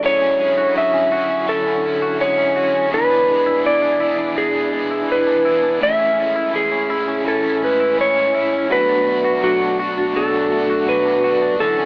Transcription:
Already playing: clean electric guitar A3 D4 F#4
0.03 overdriven electric guitar D3 F#3 C#4 E4 G#4, clean electric guitar D3, tonewheel organ D3 F#3 C#4 E4, electric slide guitar C#5
0.22 clean electric guitar C#4
0.39 clean electric guitar G#3, overdriven electric guitar C#4 E4 G#4
0.57 clean electric guitar F#4
0.74 overdriven electric guitar F#3 C#4 E4 G#4, electric slide guitar E5
0.94 clean electric guitar C#4
1.11 overdriven electric guitar C#4 E4 G#4, clean electric guitar F#4
1.30 clean electric guitar C#4
1.46 overdriven electric guitar D3 F#3 C#4 E4, clean electric guitar D3, electric slide guitar A4
1.66 clean electric guitar C#4
1.84 overdriven electric guitar C#4 E4
2.02 clean electric guitar F#4
2.18 overdriven electric guitar F#3 C#4 E4, clean electric guitar G#3, electric slide guitar C#5
2.22 overdriven electric guitar G#4
2.38 clean electric guitar C#4
2.54 overdriven electric guitar C#4 E4 G#4, clean electric guitar F#4
2.74 clean electric guitar C#4
2.92 clean electric guitar E2, tonewheel organ B2 E3 D4 E4, overdriven electric guitar E3 B3 D4 G#4, electric slide guitar B4
3.10 clean electric guitar D4
3.27 clean electric guitar G#3, overdriven electric guitar B3 D4 G#4
3.46 clean electric guitar E4
3.63 overdriven electric guitar E3 B3 D4 G#4, clean electric guitar E3, electric slide guitar D5
3.82 clean electric guitar D4
3.99 overdriven electric guitar B3 D4 G#4, clean electric guitar E4
4.18 clean electric guitar D4
4.36 clean electric guitar E2, overdriven electric guitar E3 B3 D4 G#4, electric slide guitar G#4
4.55 clean electric guitar D4
4.72 clean electric guitar G#3, overdriven electric guitar B3 D4 G#4
4.91 clean electric guitar E4
5.07 overdriven electric guitar E3 B3 D4, clean electric guitar E3
5.12 overdriven electric guitar G#4, electric slide guitar B4
5.27 clean electric guitar D4
5.44 overdriven electric guitar B3 D4 G#4, clean electric guitar E4
5.63 clean electric guitar D4
5.80 overdriven electric guitar A2 E3 G#3 C#4 E4, clean electric guitar A2, tonewheel organ A2 E3 C#4, electric slide guitar E5
5.99 clean electric guitar C#4
6.16 overdriven electric guitar G#3 C#4 E4
6.36 clean electric guitar E4
6.53 overdriven electric guitar E3 G#3 C#4 E4, clean electric guitar E3, electric slide guitar G#4
6.72 clean electric guitar C#4
6.88 overdriven electric guitar G#3 C#4 E4, clean electric guitar E4
7.08 clean electric guitar C#4
7.25 overdriven electric guitar A2 E3 C#4 E4, clean electric guitar A2, electric slide guitar A4
7.44 clean electric guitar C#4
7.61 clean electric guitar G#3, overdriven electric guitar G#3 C#4 E4, electric slide guitar B4
7.80 clean electric guitar E4
7.97 overdriven electric guitar E3 G#3 C#4 E4, clean electric guitar E3, electric slide guitar C#5
8.16 clean electric guitar C#4
8.33 overdriven electric guitar G#3 C#4 E4, clean electric guitar E4
8.53 clean electric guitar C#4
8.69 overdriven electric guitar B2 F#3 A3 D4 F#4, tonewheel organ B2 F#3 A3 D4 F#4, clean electric guitar B2, electric slide guitar B4
8.89 clean electric guitar D4
9.06 clean electric guitar A3, overdriven electric guitar A3 D4 F#4
9.24 clean electric guitar F#4
9.41 overdriven electric guitar F#3 A3 D4 F#4, clean electric guitar F#3, electric slide guitar F#4
9.61 clean electric guitar D4
9.78 overdriven electric guitar A3 D4 F#4, clean electric guitar F#4
9.97 clean electric guitar D4
10.14 overdriven electric guitar B2 F#3 A3 D4 F#4, clean electric guitar B2, electric slide guitar A4
10.34 clean electric guitar D4
10.50 clean electric guitar A3, overdriven electric guitar A3 D4 F#4
10.70 clean electric guitar F#4
10.87 overdriven electric guitar F#3 A3 D4 F#4, clean electric guitar F#3, electric slide guitar B4
11.06 clean electric guitar D4
11.23 overdriven electric guitar A3 D4 F#4, clean electric guitar F#4
11.42 clean electric guitar D4
11.59 overdriven electric guitar D3 C#4 F#4, clean electric guitar D3, tonewheel organ D3 E3 F#3 E4, electric slide guitar A4
11.78 clean electric guitar C#4

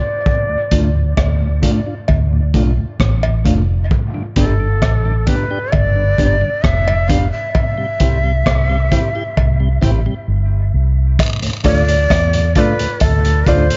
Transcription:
Already playing: shakuhachi D5
0.26 kick
0.49 tonewheel organ D2 A2
0.71 fingered electric bass D2, clean electric guitar A3 D4 F4, tonewheel organ A3 D4 F4, kick, closed hi-hat
0.95 tonewheel organ D2 A2
1.17 fingered electric bass D2, kick, cross-stick, cowbell
1.41 tonewheel organ D2 A2
1.62 tonewheel organ A3 D4 F4, clean electric guitar A3 D4 F4, kick, closed hi-hat
1.86 tonewheel organ D4 F4
2.08 fingered electric bass D2, kick, cowbell
2.33 tonewheel organ D2 A2
2.54 fingered electric bass B1, clean electric guitar A3 D4 F4, tonewheel organ A3 D4 F4, kick, closed hi-hat
2.78 tonewheel organ D2 A2
3.00 fingered electric bass A1, kick, cross-stick
3.23 tonewheel organ D2 A2, cowbell
3.44 fingered electric bass F1, tonewheel organ A3 D4 F4, clean electric guitar A3 D4 F4, kick, closed hi-hat
3.91 kick
4.14 tonewheel organ G2 D3
4.36 fingered electric bass G1, clean electric guitar B3 D4 G4, tonewheel organ B3 D4 G4, shakuhachi A4, kick, closed hi-hat
4.60 tonewheel organ G2 D3
4.82 fingered electric bass A1, kick, cross-stick, cowbell
5.05 tonewheel organ G2 D3
5.27 tonewheel organ B3 D4 G4, clean electric guitar B3 D4 G4, shakuhachi B4, kick, closed hi-hat
5.50 tonewheel organ D4 G4
5.72 fingered electric bass G1, shakuhachi D5, kick, cowbell
5.96 tonewheel organ G2 D3
6.18 fingered electric bass G1, tonewheel organ B3 D4 G4, clean electric guitar B3 D4 G4, kick, closed hi-hat
6.41 tonewheel organ G2 D3
6.62 fingered electric bass F1, shakuhachi E5, kick, cross-stick
6.87 tonewheel organ G2 D3, cowbell
7.08 tonewheel organ B3 D4 G4, clean electric guitar B3 D4 G4, shakuhachi F5, kick, closed hi-hat
7.32 shakuhachi E5
7.55 kick, cowbell
7.78 tonewheel organ C3 G3
8.00 fingered electric bass C2, tonewheel organ C4 E4 G4, clean electric guitar C4 E4 G4, kick, closed hi-hat
8.24 tonewheel organ C3 G3
8.46 fingered electric bass C2, kick, cross-stick, cowbell
8.70 tonewheel organ C3 G3
8.91 tonewheel organ C4 E4 G4, clean electric guitar C4 E4 G4, kick, closed hi-hat
9.15 tonewheel organ E4 G4
9.37 fingered electric bass C2, kick, cowbell
9.60 tonewheel organ C3 G3
9.82 fingered electric bass A1, tonewheel organ C4 E4 G4, clean electric guitar C4 E4 G4, kick, closed hi-hat
10.06 tonewheel organ C3 G3
10.28 fingered electric bass G1
10.74 fingered electric bass C2
11.19 kick, closed hi-hat, cowbell, vibraslap
11.42 tonewheel organ D2 A2, closed hi-hat
11.64 fingered electric bass D2, clean electric guitar A3 D4 F4, tonewheel organ A3 D4 F4, upright piano F4 A4 D5, shakuhachi D5, kick, closed hi-hat
11.88 tonewheel organ D2 A2, closed hi-hat
12.10 fingered electric bass E2, kick, cross-stick, closed hi-hat, cowbell
12.33 tonewheel organ D2 A2, upright piano A4 D5, closed hi-hat
12.55 clean electric guitar A3 D4 F4, tonewheel organ A3 D4 F4, upright piano F4 A4 D5, shakuhachi C5, kick, closed hi-hat
12.60 shakuhachi B4
12.79 tonewheel organ D2 A2, closed hi-hat
13.00 fingered electric bass D2, shakuhachi A4, kick, closed hi-hat, cowbell
13.25 tonewheel organ D2 A2, closed hi-hat
13.46 fingered electric bass D2, clean electric guitar A3 D4 F4, tonewheel organ A3 D4 F4, upright piano F4 A4 D5, shakuhachi C5, kick, closed hi-hat
13.70 tonewheel organ D2 A2, closed hi-hat

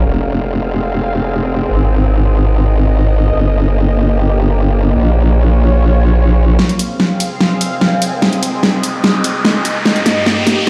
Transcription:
0.06 wobble bass F1, analog synth pad C4 G#4 F5
1.69 wobble bass G#1, analog synth pad D#5
3.32 wobble bass G1, analog synth pad A#3 G4
4.96 wobble bass A#1, analog synth pad F4 C#5
6.59 analog synth pad C4 G#4 F5, snare, riser
6.69 closed hi-hat
6.79 closed hi-hat
7.00 snare
7.20 closed hi-hat
7.41 snare
7.61 closed hi-hat
7.81 snare
8.02 closed hi-hat
8.22 analog synth pad D#5, snare
8.33 closed hi-hat
8.43 closed hi-hat
8.63 snare
8.83 closed hi-hat
9.04 snare
9.24 closed hi-hat
9.45 snare
9.65 closed hi-hat
9.85 analog synth pad G2 A#3 G4, snare
9.96 closed hi-hat
10.06 snare, closed hi-hat
10.26 snare
10.47 snare, closed hi-hat

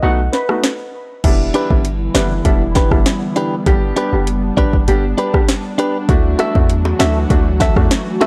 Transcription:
0.03 808-style bass B1, grand piano A3 B3 D#4 F#4, steel pan F#5
0.33 steel pan B4, snare
0.49 grand piano A3 B3 D#4 F#4, cross-stick
0.64 snare
1.24 808-style bass E1, analog synth pad D3 E3 G3 B3 E4, grand piano G3 B3 D4 E4, kick, closed hi-hat, crash
1.54 clean electric guitar D4 G4 B4, closed hi-hat
1.70 808-style bass G1, grand piano G3 B3 D4 E4, kick
1.85 closed hi-hat
2.14 808-style bass F#1, grand piano G3 B3 D4 E4, clean electric guitar D4 G4 B4, snare, closed hi-hat
2.45 808-style bass E1, grand piano G3 B3 D4 E4, kick, closed hi-hat
2.75 clean electric guitar D4 G4 B4, kick, snare, closed hi-hat
2.91 808-style bass F#1, grand piano G3 B3 D4 E4, muted clean electric guitar stroke, kick, cross-stick
3.06 snare, closed hi-hat
3.36 clean electric guitar D4 G4 B4, closed hi-hat
3.66 808-style bass G1, grand piano G3 B3 D4 G4, analog synth pad D4, kick, closed hi-hat
3.96 clean electric guitar D4 G4 B4, closed hi-hat
4.13 808-style bass F#1, grand piano G3 B3 D4 G4
4.27 closed hi-hat
4.57 808-style bass G1, grand piano G3 B3 D4 G4, clean electric guitar D4 G4 B4, kick, closed hi-hat
4.73 kick
4.87 808-style bass G1, grand piano G3 B3 D4 G4, closed hi-hat
5.18 clean electric guitar D4 G4 B4, closed hi-hat
5.34 grand piano G3 B3 D4 G4, kick, cross-stick
5.48 snare, closed hi-hat
5.78 clean electric guitar D4 G4 B4, closed hi-hat
6.09 808-style bass D2, analog synth pad E3 F#3 A3 F#4, grand piano A3 D4 E4 F#4, kick, closed hi-hat
6.39 clean electric guitar F#4 A4 E5, closed hi-hat, high bongo
6.55 808-style bass E2, grand piano A3 D4 E4 F#4, kick, high bongo
6.70 closed hi-hat
6.85 high bongo
6.99 808-style bass D2, grand piano A3 D4 E4 F#4, clean electric guitar F#4 A4 E5, snare, closed hi-hat
7.30 808-style bass D2, grand piano A3 D4 E4 F#4, kick, closed hi-hat
7.60 clean electric guitar F#4 A4 E5, kick, snare, closed hi-hat
7.76 808-style bass E2, grand piano A3 D4 E4 F#4, muted clean electric guitar stroke, kick, cross-stick
7.91 snare, closed hi-hat
8.21 clean electric guitar F#4 A4 E5, closed hi-hat, high bongo, low bongo

